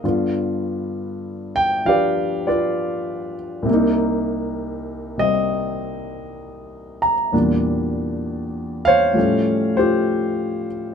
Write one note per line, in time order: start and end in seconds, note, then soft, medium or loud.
0.04 3.68 G2 soft
0.04 3.68 D3 soft
0.04 3.68 B3 soft
0.04 2.46 F4 medium
1.56 1.62 G5 medium
1.85 3.68 F3 soft
1.85 3.68 D4 soft
1.85 3.69 G4 soft
1.85 2.47 B4 medium
1.85 2.46 D5 medium
1.85 2.49 F5 medium
2.47 3.64 F4 medium
2.47 3.65 B4 medium
2.47 3.34 D5 medium
3.62 7.30 C2 medium
3.62 5.16 C3 medium
3.70 7.34 A#3 medium
3.70 7.36 D#4 medium
5.18 7.32 C3 soft
5.18 7.32 G3 soft
5.18 7.34 C4 soft
5.18 5.31 D#5 medium
7.02 7.14 A#5 medium
7.32 9.16 E2 soft
7.32 9.16 A#2 soft
7.32 9.14 G3 soft
7.32 9.16 D4 medium
8.85 9.75 C5 medium
8.85 10.65 C#5 medium
8.85 9.73 F5 loud
9.13 10.94 A2 soft
9.13 10.94 F3 soft
9.13 10.94 G3 soft
9.17 10.94 A3 soft
9.17 10.94 C#4 medium
9.77 10.94 F4 medium
9.77 10.94 G4 medium
9.77 10.65 C5 medium